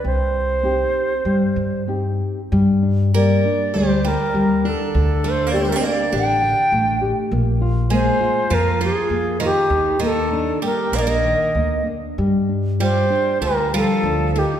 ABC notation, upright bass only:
X:1
M:4/4
L:1/8
Q:1/4=99
K:Cm
V:1 name="Upright bass" clef=bass
C,,4 G,, G,,3 | [K:Gm] G,,4 D,,2 E,,2 | D,,4 A,,,2 A,,,2 | B,,,4 F,,2 F,,2 |
E,,4 B,,,2 D,,2 | G,,4 D,,2 D,,2 |]